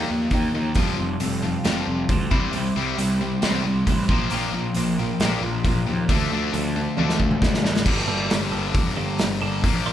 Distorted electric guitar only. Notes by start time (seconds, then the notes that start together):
0.10 D#3 A#3
0.32 D#3 A#3
0.55 D#3 A#3
0.76 F2 C3 F3
0.98 F2 C3
1.20 F2 C3
1.42 F2 C3
1.64 F2 C3 F3
1.87 F2 C3
2.10 F2 C3
2.31 C3 G3 C4
2.54 C3 G3
2.76 C3 G3 C4
2.99 C3 G3
3.21 C3 G3
3.42 C3 G3 C4
3.65 C3 G3
3.87 C3 G3
4.10 A#2 F3 A#3
4.31 A#2 F3 A#3
4.55 A#2 F3
4.77 A#2 F3
4.99 A#2 F3
5.21 A#2 F3 A#3
5.44 A#2 F3
5.65 A#2 F3
5.87 A#2 F3
6.09 D3 A3 D4
6.32 D3 A3 D4
6.53 D3 A3
6.76 D3 A3
6.98 D3 A3 D4
7.20 D3 A3
7.42 D3 A3
7.64 D3 A3
7.85 G2 D3 G3
9.63 A#2 F3 A#3